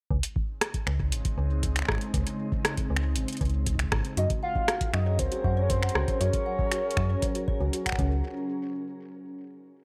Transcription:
0.11 0.20 C#2 medium
0.11 4.13 C#3 medium
0.11 4.13 G#3 medium
0.11 4.13 C4 medium
0.11 4.13 D#4 medium
0.11 kick medium
0.23 closed hi-hat medium
0.36 kick loud
0.61 finger snap medium
0.61 cross-stick loud
0.61 closed hi-hat medium
0.74 kick medium
0.74 closed hi-hat medium
0.87 1.14 C#2 medium
0.87 finger snap medium
1.00 kick medium
1.12 1.21 G#1 medium
1.12 closed hi-hat medium
1.25 kick loud
1.25 closed hi-hat soft
1.38 1.83 C#2 medium
1.63 kick medium
1.63 closed hi-hat medium
1.76 finger snap medium
1.76 closed hi-hat soft
1.79 finger snap medium
1.82 finger snap soft
1.85 1.98 G#1 medium
1.85 finger snap soft
1.85 kick medium
1.89 finger snap soft
1.89 cross-stick loud
1.92 finger snap soft
1.95 finger snap soft
1.98 finger snap soft
1.98 closed hi-hat soft
2.14 2.23 C#2 medium
2.14 kick loud
2.14 closed hi-hat medium
2.27 closed hi-hat medium
2.52 kick loud
2.65 finger snap medium
2.65 cross-stick loud
2.65 closed hi-hat medium
2.77 kick loud
2.77 closed hi-hat soft
2.90 3.17 C#2 medium
2.96 finger snap medium
3.16 3.25 G#1 medium
3.16 closed hi-hat medium
3.28 closed hi-hat soft
3.33 closed hi-hat soft
3.37 closed hi-hat soft
3.41 3.86 C#2 medium
3.41 kick loud
3.41 closed hi-hat soft
3.45 closed hi-hat soft
3.50 closed hi-hat soft
3.66 kick loud
3.66 closed hi-hat medium
3.75 kick medium
3.79 finger snap medium
3.79 closed hi-hat soft
3.83 kick medium
3.92 4.01 G#1 medium
3.92 finger snap medium
3.92 kick loud
3.92 cross-stick loud
4.05 closed hi-hat soft
4.17 4.27 F#2 medium
4.17 7.95 F#3 medium
4.17 7.95 C#4 medium
4.17 4.26 F#4 medium
4.17 7.95 G#4 medium
4.17 7.95 A#4 medium
4.17 4.29 D#5 loud
4.17 closed hi-hat medium
4.30 kick loud
4.30 closed hi-hat medium
4.43 4.90 F5 loud
4.43 4.52 F#5 medium
4.55 kick loud
4.68 4.74 F#4 medium
4.68 finger snap medium
4.68 cross-stick loud
4.68 closed hi-hat medium
4.81 kick loud
4.81 closed hi-hat medium
4.94 5.20 F#2 medium
4.94 5.21 D#5 medium
4.94 finger snap medium
5.06 5.12 C#5 medium
5.19 5.28 C#2 medium
5.19 5.28 C5 medium
5.19 5.62 C5 loud
5.19 kick loud
5.19 closed hi-hat medium
5.32 5.44 F#4 medium
5.32 closed hi-hat medium
5.44 5.90 F#2 medium
5.44 5.53 F#5 medium
5.44 kick loud
5.57 5.66 C#5 medium
5.63 5.71 C#5 medium
5.70 5.79 A#4 medium
5.70 6.22 C5 medium
5.70 kick loud
5.70 closed hi-hat medium
5.83 5.92 F#5 medium
5.83 finger snap medium
5.89 closed hi-hat medium
5.95 6.04 C#2 medium
5.95 6.04 F#4 medium
5.95 cross-stick loud
6.08 6.13 C#5 medium
6.08 kick loud
6.08 closed hi-hat soft
6.21 6.30 F#2 loud
6.21 6.30 F#4 medium
6.21 7.73 C#5 loud
6.21 closed hi-hat medium
6.33 kick loud
6.33 closed hi-hat medium
6.46 6.55 F#5 medium
6.59 kick loud
6.72 6.77 F#4 medium
6.72 finger snap medium
6.72 closed hi-hat medium
6.91 closed hi-hat soft
6.97 7.15 F#2 medium
6.97 finger snap medium
6.97 kick loud
7.10 7.15 C#5 medium
7.22 7.31 C5 medium
7.22 kick loud
7.22 closed hi-hat medium
7.35 7.47 F#4 medium
7.35 closed hi-hat soft
7.48 7.57 C#5 loud
7.48 kick loud
7.60 7.70 C#2 medium
7.60 7.72 F#4 medium
7.73 7.79 F#4 medium
7.73 closed hi-hat medium
7.86 7.91 F#5 medium
7.86 finger snap medium
7.86 kick soft
7.86 closed hi-hat soft
7.89 finger snap medium
7.89 kick medium
7.92 finger snap soft
7.96 8.22 C#2 loud
7.96 8.22 C#4 medium
7.96 finger snap soft
7.96 kick loud
7.96 closed hi-hat soft

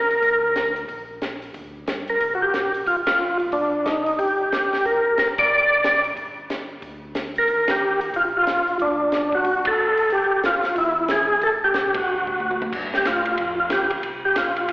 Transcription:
0.00 0.19 G1 medium
0.00 0.73 A#4 medium
0.11 open hi-hat soft
0.22 0.85 D2 medium
0.22 kick soft
0.22 open hi-hat soft
0.56 snare medium
0.56 closed hi-hat soft
0.76 open hi-hat soft
0.88 1.51 A#1 medium
0.88 kick soft
0.88 open hi-hat soft
1.22 snare medium
1.22 closed hi-hat soft
1.42 open hi-hat soft
1.54 1.85 D2 medium
1.54 kick soft
1.54 open hi-hat soft
1.87 2.18 G2 medium
1.87 snare medium
1.87 closed hi-hat medium
2.08 2.34 A#4 medium
2.08 open hi-hat soft
2.20 2.51 C2 medium
2.20 kick soft
2.20 open hi-hat soft
2.35 2.42 F#4 medium
2.42 2.72 G4 medium
2.52 2.83 A#1 medium
2.52 snare medium
2.52 closed hi-hat soft
2.74 open hi-hat soft
2.86 3.36 G1 medium
2.86 2.96 F4 medium
2.86 kick soft
2.86 open hi-hat soft
3.07 3.38 F4 medium
3.07 snare medium
3.07 ride medium
3.39 3.51 B1 medium
3.39 open hi-hat soft
3.52 4.15 C2 medium
3.52 3.87 D4 medium
3.52 kick soft
3.52 open hi-hat soft
3.85 4.19 D#4 medium
3.85 snare medium
3.85 closed hi-hat soft
4.06 open hi-hat soft
4.19 4.68 G1 medium
4.19 4.86 G4 medium
4.19 kick soft
4.19 open hi-hat soft
4.52 snare medium
4.52 closed hi-hat medium
4.72 4.78 G1 soft
4.72 snare soft
4.72 open hi-hat soft
4.85 5.15 G1 medium
4.85 5.18 A#4 medium
4.85 kick soft
4.85 open hi-hat soft
5.17 5.48 F#1 medium
5.17 5.28 A#4 medium
5.17 snare medium
5.17 closed hi-hat soft
5.38 6.00 D5 loud
5.38 kick medium
5.38 ride medium
5.50 6.13 A#1 medium
5.84 snare medium
5.84 closed hi-hat medium
6.04 open hi-hat soft
6.16 6.79 G1 medium
6.16 kick soft
6.16 open hi-hat soft
6.50 snare medium
6.50 closed hi-hat soft
6.82 7.44 D2 medium
6.82 kick soft
6.82 open hi-hat soft
7.15 snare medium
7.15 closed hi-hat medium
7.36 7.71 A#4 loud
7.36 open hi-hat soft
7.48 8.10 D#2 medium
7.48 kick soft
7.48 open hi-hat soft
7.68 8.00 G4 medium
7.68 snare medium
7.68 ride medium
8.01 open hi-hat soft
8.14 8.63 A#1 medium
8.14 8.25 F4 medium
8.14 kick soft
8.14 open hi-hat soft
8.37 8.78 F4 loud
8.47 snare medium
8.47 closed hi-hat medium
8.67 8.73 A#1 soft
8.67 open hi-hat soft
8.79 9.10 D2 medium
8.79 9.35 D4 medium
8.79 kick soft
8.79 open hi-hat soft
9.12 9.42 C2 medium
9.12 snare medium
9.12 closed hi-hat soft
9.32 9.67 F#4 loud
9.32 kick soft
9.44 9.94 A1 medium
9.44 kick soft
9.44 open hi-hat soft
9.65 10.13 A4 medium
9.65 kick medium
9.65 ride medium
9.97 10.04 A1 soft
9.97 open hi-hat soft
10.10 10.72 G1 medium
10.10 10.42 G4 medium
10.10 kick soft
10.10 open hi-hat soft
10.43 10.75 F4 medium
10.43 snare medium
10.43 closed hi-hat soft
10.63 snare soft
10.63 open hi-hat soft
10.76 11.38 E2 medium
10.76 11.11 E4 medium
10.76 kick soft
10.76 open hi-hat soft
11.08 11.44 G#4 medium
11.08 snare medium
11.08 closed hi-hat medium
11.41 11.72 A1 medium
11.41 11.52 A4 medium
11.41 kick soft
11.41 open hi-hat soft
11.64 11.97 G4 medium
11.74 12.04 C2 medium
11.74 snare medium
11.74 closed hi-hat soft
11.94 12.57 F#4 medium
11.94 kick medium
11.94 ride medium
12.06 12.69 D2 medium
12.27 kick soft
12.40 high tom soft
12.51 high tom medium
12.62 high tom medium
12.72 13.04 G2 medium
12.72 kick medium
12.72 crash medium
12.94 13.06 G4 medium
12.94 snare medium
13.05 13.37 A2 medium
13.05 13.55 F4 medium
13.05 kick soft
13.05 snare medium
13.05 hi-hat pedal soft
13.05 ride medium
13.25 ride soft
13.37 13.69 F2 medium
13.37 kick soft
13.37 ride medium
13.60 13.71 F4 medium
13.70 13.89 D2 medium
13.70 13.91 G4 medium
13.70 kick soft
13.70 snare medium
13.70 hi-hat pedal medium
13.70 ride medium
13.90 13.96 D2 soft
13.90 ride soft
14.03 14.35 C2 medium
14.03 kick soft
14.03 ride medium
14.25 14.36 G4 medium
14.35 14.67 B1 medium
14.35 14.73 F4 medium
14.35 kick soft
14.35 snare medium
14.35 hi-hat pedal soft
14.35 ride medium
14.56 ride soft
14.68 14.73 A#1 medium
14.68 kick soft
14.68 ride medium

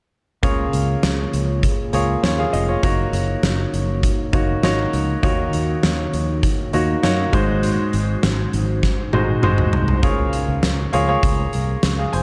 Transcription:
0.43 0.65 C#2 medium
0.43 1.29 C#3 medium
0.43 1.15 A#3 medium
0.43 7.29 A#3 medium
0.43 1.16 F4 medium
0.43 2.81 F4 medium
0.43 1.16 G#4 medium
0.43 2.81 G#4 medium
0.43 7.29 C#5 medium
0.43 1.16 C#5 medium
0.43 kick medium
0.43 closed hi-hat medium
0.73 0.95 C#2 medium
0.73 closed hi-hat medium
1.03 1.25 C#2 medium
1.03 snare medium
1.03 closed hi-hat medium
1.33 1.66 C#2 medium
1.33 closed hi-hat medium
1.63 kick medium
1.63 closed hi-hat medium
1.93 2.15 C#2 medium
1.93 2.11 A#3 medium
1.93 2.11 F4 medium
1.93 2.12 G#4 medium
1.93 2.12 C#5 medium
1.93 closed hi-hat medium
2.23 2.45 D#2 medium
2.23 2.38 F4 soft
2.23 2.38 C#5 medium
2.23 snare medium
2.23 closed hi-hat medium
2.38 2.53 G#4 medium
2.38 2.53 F5 medium
2.53 2.75 F1 medium
2.53 2.67 D#5 medium
2.53 closed hi-hat medium
2.68 2.97 F4 soft
2.68 2.82 C#5 medium
2.83 3.05 F#1 medium
2.83 3.55 A#3 medium
2.83 3.56 D#4 medium
2.83 9.99 D#4 medium
2.83 7.29 F#4 medium
2.83 3.56 F#4 medium
2.83 3.56 C#5 medium
2.83 kick medium
2.83 closed hi-hat medium
3.13 3.35 F#1 medium
3.13 closed hi-hat medium
3.43 3.65 F#1 medium
3.43 snare medium
3.43 closed hi-hat medium
3.73 4.06 F#1 medium
3.73 closed hi-hat medium
4.03 kick medium
4.03 closed hi-hat medium
4.33 4.55 F#1 medium
4.33 4.51 A#3 medium
4.33 4.51 D#4 medium
4.33 4.52 F#4 medium
4.33 4.52 C#5 medium
4.33 kick medium
4.33 closed hi-hat medium
4.63 4.85 G#1 medium
4.63 4.99 A#3 medium
4.63 5.00 D#4 medium
4.63 5.00 F#4 medium
4.63 5.00 C#5 medium
4.63 snare medium
4.63 closed hi-hat medium
4.93 5.15 C#2 medium
4.93 closed hi-hat medium
5.23 5.45 D#2 medium
5.23 6.09 D#3 medium
5.23 5.95 A#3 medium
5.23 5.96 D#4 medium
5.23 5.96 F#4 medium
5.23 5.96 C#5 medium
5.23 kick medium
5.23 closed hi-hat medium
5.53 5.75 D#2 medium
5.53 closed hi-hat medium
5.83 6.05 D#2 medium
5.83 snare medium
5.83 closed hi-hat medium
6.13 6.46 D#2 medium
6.13 closed hi-hat medium
6.43 kick medium
6.43 closed hi-hat medium
6.73 6.95 D#2 medium
6.73 6.91 A#3 medium
6.73 6.91 D#4 medium
6.73 6.92 F#4 medium
6.73 6.92 C#5 medium
6.73 closed hi-hat medium
7.03 7.25 F#2 medium
7.03 7.33 A#3 medium
7.03 7.32 D#4 medium
7.03 7.32 F#4 medium
7.03 7.34 C#5 medium
7.03 snare medium
7.03 closed hi-hat medium
7.33 7.76 G#1 medium
7.33 8.19 G#2 medium
7.33 8.29 G#3 medium
7.33 10.01 G#3 medium
7.33 8.29 D#4 medium
7.33 10.00 F#4 medium
7.33 8.29 F#4 medium
7.33 10.00 C5 medium
7.33 8.30 C5 medium
7.33 kick medium
7.33 closed hi-hat medium
7.63 closed hi-hat medium
7.93 8.15 G#1 medium
7.93 closed hi-hat medium
8.23 8.45 G#1 medium
8.23 snare medium
8.23 closed hi-hat medium
8.53 8.86 G#1 medium
8.53 closed hi-hat medium
8.83 kick medium
8.83 snare soft
9.13 9.35 G#1 medium
9.13 9.31 G#3 medium
9.13 9.31 D#4 medium
9.13 9.31 F#4 medium
9.13 9.32 C5 medium
9.13 high tom medium
9.43 9.65 G#1 medium
9.43 9.79 G#3 medium
9.43 9.79 D#4 medium
9.43 9.80 F#4 medium
9.43 9.80 C5 medium
9.43 mid tom medium
9.58 mid tom medium
9.73 9.95 C2 medium
9.73 floor tom medium
9.88 floor tom medium
10.03 10.25 C#2 medium
10.03 10.89 C#3 medium
10.03 10.57 A#3 medium
10.03 10.58 F4 medium
10.03 10.58 G#4 medium
10.03 10.58 C#5 medium
10.03 kick medium
10.03 closed hi-hat medium
10.33 closed hi-hat medium
10.48 10.59 C#2 medium
10.63 10.85 C#2 medium
10.63 snare medium
10.63 closed hi-hat medium
10.93 11.15 C#2 medium
10.93 11.02 A#3 medium
10.93 11.02 F4 medium
10.93 11.02 G#4 medium
10.93 11.03 C#5 medium
10.93 closed hi-hat medium
11.07 11.80 A#3 medium
11.07 11.81 F4 medium
11.07 11.53 G#4 medium
11.07 11.54 C#5 medium
11.23 11.45 C#2 medium
11.23 kick medium
11.23 closed hi-hat loud
11.53 11.75 C2 medium
11.53 closed hi-hat medium
11.83 12.05 C#2 medium
11.83 snare medium
11.83 closed hi-hat medium
11.98 12.13 G#4 soft
11.98 12.12 F5 medium
12.13 12.23 F1 medium
12.13 12.23 C5 medium
12.13 12.23 G#5 medium
12.13 closed hi-hat medium

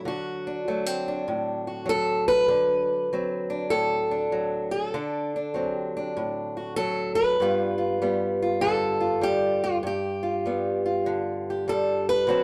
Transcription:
0.00 0.67 F#3 medium
0.05 2.48 D3 medium
0.05 1.66 F#4 medium
0.47 1.08 D4 soft
0.68 1.85 F#3 medium
0.68 0.86 A3 soft
0.86 2.50 C4 soft
1.08 3.16 D4 soft
1.28 2.47 A2 medium
1.67 1.89 F#4 soft
1.86 3.12 F#3 medium
1.86 2.28 A4 loud
2.28 3.70 B4 loud
2.48 4.91 D3 medium
3.13 4.31 F#3 medium
3.13 4.93 C4 soft
3.50 4.11 D4 medium
3.70 4.91 A2 medium
3.70 4.70 A4 loud
4.11 4.94 D4 soft
4.32 4.91 F#3 medium
4.71 5.74 A4 medium
4.94 7.36 D3 medium
4.94 5.35 D4 soft
5.36 5.96 D4 soft
5.54 6.77 F#3 medium
5.54 7.36 C4 soft
5.74 6.16 G4 medium
5.97 7.42 D4 soft
6.17 7.36 A2 medium
6.57 6.76 F#4 soft
6.76 7.36 F#3 medium
6.76 7.15 A4 loud
7.15 8.61 B4 loud
7.40 9.82 G2 medium
7.40 8.01 G3 medium
7.40 8.02 B3 medium
7.40 7.78 F4 soft
7.78 8.42 F4 soft
8.02 9.20 G3 medium
8.02 9.82 B3 soft
8.42 8.99 F4 soft
8.61 9.82 D3 medium
8.61 9.23 A4 loud
9.00 9.62 F4 soft
9.21 9.81 G3 medium
9.21 9.84 G4 loud
9.64 9.76 F4 medium
9.83 12.27 G2 medium
9.83 11.48 G4 medium
10.23 10.85 F4 soft
10.46 11.67 G3 medium
10.46 12.28 B3 soft
10.86 12.28 F4 soft
11.06 12.26 D3 medium
11.50 11.69 G4 soft
11.68 12.27 G3 medium
11.68 12.08 A4 loud
12.09 12.44 B4 loud
12.27 12.44 D3 medium
12.27 12.44 F#3 medium
12.27 12.44 C4 soft
12.27 12.44 F#4 medium

